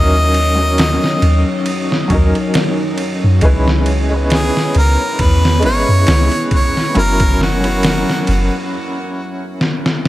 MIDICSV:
0, 0, Header, 1, 6, 480
1, 0, Start_track
1, 0, Tempo, 882353
1, 1866, Time_signature, 4, 2, 24, 8
1, 5484, End_track
2, 0, Start_track
2, 0, Title_t, "Harmonica"
2, 0, Program_c, 0, 22
2, 0, Note_on_c, 0, 75, 112
2, 885, Note_off_c, 0, 75, 0
2, 2355, Note_on_c, 0, 68, 85
2, 2574, Note_off_c, 0, 68, 0
2, 2600, Note_on_c, 0, 70, 101
2, 2836, Note_on_c, 0, 71, 99
2, 2844, Note_off_c, 0, 70, 0
2, 3071, Note_off_c, 0, 71, 0
2, 3075, Note_on_c, 0, 73, 111
2, 3529, Note_off_c, 0, 73, 0
2, 3560, Note_on_c, 0, 73, 98
2, 3777, Note_off_c, 0, 73, 0
2, 3797, Note_on_c, 0, 70, 114
2, 4015, Note_off_c, 0, 70, 0
2, 4038, Note_on_c, 0, 66, 89
2, 4730, Note_off_c, 0, 66, 0
2, 5484, End_track
3, 0, Start_track
3, 0, Title_t, "Ambient pad"
3, 0, Program_c, 1, 92
3, 0, Note_on_c, 1, 54, 80
3, 0, Note_on_c, 1, 63, 74
3, 0, Note_on_c, 1, 73, 89
3, 1847, Note_off_c, 1, 54, 0
3, 1848, Note_off_c, 1, 63, 0
3, 1861, Note_on_c, 1, 59, 84
3, 1863, Note_on_c, 1, 64, 78
3, 2807, Note_off_c, 1, 73, 0
3, 2825, Note_on_c, 1, 71, 91
3, 3764, Note_off_c, 1, 59, 0
3, 3776, Note_off_c, 1, 71, 0
3, 3789, Note_on_c, 1, 54, 83
3, 3791, Note_on_c, 1, 70, 86
3, 4723, Note_off_c, 1, 64, 0
3, 4738, Note_off_c, 1, 54, 0
3, 4739, Note_off_c, 1, 70, 0
3, 5484, End_track
4, 0, Start_track
4, 0, Title_t, "Felt piano"
4, 0, Program_c, 2, 0
4, 0, Note_on_c, 2, 54, 86
4, 0, Note_on_c, 2, 61, 85
4, 0, Note_on_c, 2, 63, 80
4, 0, Note_on_c, 2, 70, 100
4, 33, Control_c, 2, 64, 127
4, 282, Note_off_c, 2, 54, 0
4, 285, Note_off_c, 2, 61, 0
4, 288, Note_off_c, 2, 63, 0
4, 293, Note_off_c, 2, 70, 0
4, 300, Note_on_c, 2, 54, 69
4, 315, Note_on_c, 2, 61, 68
4, 329, Note_on_c, 2, 63, 64
4, 340, Note_on_c, 2, 70, 79
4, 1111, Note_off_c, 2, 54, 0
4, 1118, Note_off_c, 2, 61, 0
4, 1125, Note_off_c, 2, 63, 0
4, 1131, Note_off_c, 2, 70, 0
4, 1131, Note_on_c, 2, 54, 81
4, 1140, Note_on_c, 2, 61, 81
4, 1154, Note_on_c, 2, 63, 77
4, 1167, Note_on_c, 2, 70, 93
4, 1834, Note_off_c, 2, 54, 0
4, 1838, Note_off_c, 2, 61, 0
4, 1845, Note_off_c, 2, 63, 0
4, 1851, Note_off_c, 2, 70, 0
4, 1860, Note_on_c, 2, 56, 94
4, 1867, Note_on_c, 2, 61, 83
4, 1874, Control_c, 2, 64, 0
4, 1874, Note_on_c, 2, 64, 81
4, 1877, Note_on_c, 2, 71, 108
4, 1979, Control_c, 2, 64, 127
4, 2206, Note_off_c, 2, 56, 0
4, 2209, Note_off_c, 2, 61, 0
4, 2213, Note_off_c, 2, 64, 0
4, 2214, Note_off_c, 2, 71, 0
4, 2226, Note_on_c, 2, 56, 73
4, 2238, Note_on_c, 2, 61, 67
4, 2252, Note_on_c, 2, 64, 68
4, 2264, Note_on_c, 2, 59, 82
4, 3034, Note_off_c, 2, 56, 0
4, 3039, Note_off_c, 2, 61, 0
4, 3044, Note_on_c, 2, 56, 87
4, 3047, Note_off_c, 2, 64, 0
4, 3052, Note_off_c, 2, 59, 0
4, 3055, Note_on_c, 2, 61, 80
4, 3069, Note_on_c, 2, 64, 80
4, 3082, Note_on_c, 2, 71, 94
4, 3750, Note_off_c, 2, 56, 0
4, 3755, Note_off_c, 2, 61, 0
4, 3762, Note_off_c, 2, 64, 0
4, 3769, Note_off_c, 2, 71, 0
4, 3778, Note_on_c, 2, 54, 94
4, 3782, Note_on_c, 2, 61, 90
4, 3789, Note_on_c, 2, 64, 83
4, 3794, Control_c, 2, 64, 0
4, 3795, Note_on_c, 2, 70, 106
4, 3872, Control_c, 2, 64, 127
4, 4125, Note_off_c, 2, 54, 0
4, 4127, Note_off_c, 2, 61, 0
4, 4130, Note_off_c, 2, 64, 0
4, 4133, Note_off_c, 2, 70, 0
4, 4138, Note_on_c, 2, 54, 75
4, 4152, Note_on_c, 2, 61, 66
4, 4162, Note_on_c, 2, 64, 68
4, 4175, Note_on_c, 2, 70, 76
4, 4735, Note_off_c, 2, 54, 0
4, 4742, Note_off_c, 2, 61, 0
4, 4747, Note_off_c, 2, 64, 0
4, 4753, Note_off_c, 2, 70, 0
4, 5484, End_track
5, 0, Start_track
5, 0, Title_t, "808-style bass"
5, 0, Program_c, 3, 38
5, 0, Note_on_c, 3, 39, 97
5, 535, Note_off_c, 3, 39, 0
5, 666, Note_on_c, 3, 39, 96
5, 785, Note_off_c, 3, 39, 0
5, 1145, Note_on_c, 3, 39, 91
5, 1264, Note_off_c, 3, 39, 0
5, 1763, Note_on_c, 3, 42, 86
5, 1855, Note_off_c, 3, 42, 0
5, 1864, Note_on_c, 3, 37, 103
5, 2454, Note_off_c, 3, 37, 0
5, 2588, Note_on_c, 3, 37, 102
5, 2706, Note_off_c, 3, 37, 0
5, 2827, Note_on_c, 3, 40, 93
5, 3065, Note_on_c, 3, 32, 90
5, 3073, Note_off_c, 3, 40, 0
5, 3184, Note_off_c, 3, 32, 0
5, 3203, Note_on_c, 3, 42, 79
5, 3295, Note_off_c, 3, 42, 0
5, 3310, Note_on_c, 3, 37, 98
5, 3427, Note_off_c, 3, 37, 0
5, 3788, Note_on_c, 3, 30, 96
5, 4376, Note_off_c, 3, 30, 0
5, 4508, Note_on_c, 3, 30, 105
5, 4626, Note_off_c, 3, 30, 0
5, 5484, End_track
6, 0, Start_track
6, 0, Title_t, "Drums"
6, 187, Note_on_c, 9, 51, 64
6, 241, Note_off_c, 9, 51, 0
6, 425, Note_on_c, 9, 51, 86
6, 432, Note_on_c, 9, 38, 111
6, 479, Note_off_c, 9, 51, 0
6, 487, Note_off_c, 9, 38, 0
6, 566, Note_on_c, 9, 38, 42
6, 620, Note_off_c, 9, 38, 0
6, 665, Note_on_c, 9, 51, 61
6, 719, Note_off_c, 9, 51, 0
6, 902, Note_on_c, 9, 51, 76
6, 956, Note_off_c, 9, 51, 0
6, 1045, Note_on_c, 9, 38, 39
6, 1100, Note_off_c, 9, 38, 0
6, 1142, Note_on_c, 9, 51, 70
6, 1144, Note_on_c, 9, 36, 95
6, 1197, Note_off_c, 9, 51, 0
6, 1199, Note_off_c, 9, 36, 0
6, 1280, Note_on_c, 9, 51, 42
6, 1334, Note_off_c, 9, 51, 0
6, 1381, Note_on_c, 9, 51, 83
6, 1389, Note_on_c, 9, 38, 110
6, 1435, Note_off_c, 9, 51, 0
6, 1443, Note_off_c, 9, 38, 0
6, 1619, Note_on_c, 9, 51, 65
6, 1673, Note_off_c, 9, 51, 0
6, 1857, Note_on_c, 9, 51, 77
6, 1864, Note_on_c, 9, 36, 104
6, 1911, Note_off_c, 9, 51, 0
6, 1918, Note_off_c, 9, 36, 0
6, 2000, Note_on_c, 9, 38, 38
6, 2055, Note_off_c, 9, 38, 0
6, 2099, Note_on_c, 9, 51, 65
6, 2154, Note_off_c, 9, 51, 0
6, 2341, Note_on_c, 9, 51, 84
6, 2348, Note_on_c, 9, 38, 104
6, 2395, Note_off_c, 9, 51, 0
6, 2403, Note_off_c, 9, 38, 0
6, 2486, Note_on_c, 9, 38, 34
6, 2540, Note_off_c, 9, 38, 0
6, 2581, Note_on_c, 9, 51, 67
6, 2636, Note_off_c, 9, 51, 0
6, 2823, Note_on_c, 9, 51, 81
6, 2826, Note_on_c, 9, 36, 107
6, 2878, Note_off_c, 9, 51, 0
6, 2880, Note_off_c, 9, 36, 0
6, 2966, Note_on_c, 9, 38, 53
6, 3020, Note_off_c, 9, 38, 0
6, 3060, Note_on_c, 9, 51, 64
6, 3114, Note_off_c, 9, 51, 0
6, 3301, Note_on_c, 9, 51, 80
6, 3308, Note_on_c, 9, 38, 116
6, 3355, Note_off_c, 9, 51, 0
6, 3363, Note_off_c, 9, 38, 0
6, 3436, Note_on_c, 9, 51, 43
6, 3490, Note_off_c, 9, 51, 0
6, 3542, Note_on_c, 9, 51, 71
6, 3544, Note_on_c, 9, 36, 97
6, 3596, Note_off_c, 9, 51, 0
6, 3598, Note_off_c, 9, 36, 0
6, 3684, Note_on_c, 9, 38, 36
6, 3739, Note_off_c, 9, 38, 0
6, 3782, Note_on_c, 9, 51, 59
6, 3837, Note_off_c, 9, 51, 0
6, 3916, Note_on_c, 9, 51, 77
6, 3919, Note_on_c, 9, 36, 97
6, 3970, Note_off_c, 9, 51, 0
6, 3973, Note_off_c, 9, 36, 0
6, 4033, Note_on_c, 9, 38, 32
6, 4087, Note_off_c, 9, 38, 0
6, 4156, Note_on_c, 9, 51, 59
6, 4211, Note_off_c, 9, 51, 0
6, 4260, Note_on_c, 9, 51, 86
6, 4268, Note_on_c, 9, 38, 105
6, 4315, Note_off_c, 9, 51, 0
6, 4322, Note_off_c, 9, 38, 0
6, 4404, Note_on_c, 9, 38, 45
6, 4458, Note_off_c, 9, 38, 0
6, 4500, Note_on_c, 9, 51, 67
6, 4555, Note_off_c, 9, 51, 0
6, 5228, Note_on_c, 9, 38, 59
6, 5282, Note_off_c, 9, 38, 0
6, 5363, Note_on_c, 9, 38, 59
6, 5418, Note_off_c, 9, 38, 0
6, 5484, End_track
0, 0, End_of_file